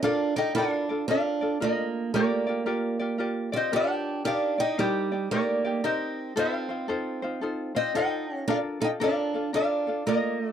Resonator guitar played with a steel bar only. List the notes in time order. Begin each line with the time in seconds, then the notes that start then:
0.04 D5 F5
0.38 D#5 G5
0.58 D5 F5
1.11 D5 F5
1.63 A#4 D#5
2.16 A#4 D5
3.56 C5 D#5
3.76 D5 G5
4.27 D5 F5
4.60 D#5 G5
4.80 G4 C5
5.32 A#4 D5
5.85 C5 D#5
6.39 C5 E5
6.56 F5
7.76 C5 D#5
7.97 D#5 G5
8.39 F5
8.50 D5 F5
8.84 D#5 G5
9.04 D5 F5
9.56 D5 F5
10.08 A#4 D#5
10.48 D5